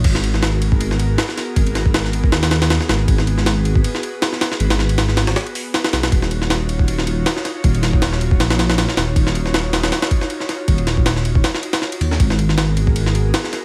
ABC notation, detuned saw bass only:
X:1
M:4/4
L:1/8
Q:"Swing 16ths" 1/4=158
K:G#m
V:1 name="Detuned saw bass" clef=bass
G,,,4 G,,,2 z2 | G,,,4 D,,2 z G,,, | G,,,4 z4 | G,,,4 z3 B,,, |
D,,,4 D,,,2 z2 | D,,,4 A,,,2 z D,,, | D,,,4 z4 | D,,,4 z3 D,, |
G,,,4 G,,,2 z2 |]